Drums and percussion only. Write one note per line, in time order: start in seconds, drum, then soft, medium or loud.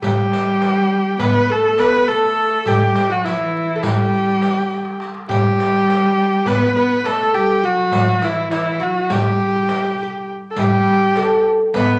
0.02 riq medium
0.02 darbuka dum medium
0.32 riq medium
0.32 darbuka tek medium
0.61 riq soft
0.61 darbuka tek medium
1.19 riq medium
1.19 darbuka dum medium
1.78 riq medium
1.78 darbuka tek medium
1.94 riq soft
2.09 riq soft
2.66 riq medium
2.66 darbuka dum loud
2.95 riq medium
2.95 darbuka tek medium
3.25 riq soft
3.25 darbuka tek medium
3.83 riq medium
3.83 darbuka dum loud
4.12 riq soft
4.12 darbuka ka soft
4.41 riq soft
4.41 darbuka tek medium
4.56 riq soft
4.56 darbuka ka soft
4.70 riq soft
4.70 darbuka tek medium
4.85 darbuka ka medium
5.00 riq soft
5.00 darbuka tek medium
5.14 darbuka ka medium
5.29 riq medium
5.29 darbuka dum medium
5.59 riq soft
5.59 darbuka tek medium
5.88 riq soft
5.88 darbuka tek medium
6.45 riq medium
6.45 darbuka dum medium
7.04 riq soft
7.04 darbuka tek medium
7.19 riq soft
7.19 darbuka ka soft
7.35 riq soft
7.91 riq medium
7.91 darbuka dum medium
8.22 riq soft
8.22 darbuka tek medium
8.51 riq soft
8.51 darbuka tek medium
9.10 riq medium
9.10 darbuka dum medium
9.69 riq medium
9.69 darbuka tek medium
9.84 riq soft
9.84 darbuka ka soft
9.98 riq soft
10.29 darbuka ka soft
10.56 riq medium
10.56 darbuka dum medium
10.87 darbuka tek medium
11.16 riq medium
11.16 darbuka tek medium
11.74 riq medium
11.74 darbuka dum medium